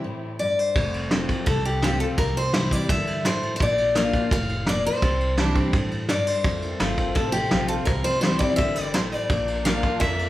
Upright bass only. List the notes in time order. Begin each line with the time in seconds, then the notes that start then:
0.75 F1
1.47 C2
2.18 C2
2.89 G2
3.60 A#1
4.31 F1
5.02 C2
5.73 G2
6.44 F2
6.80 G1
7.16 A1
7.51 A#1
7.87 C2
8.59 G1
9.30 A#1
10.01 F2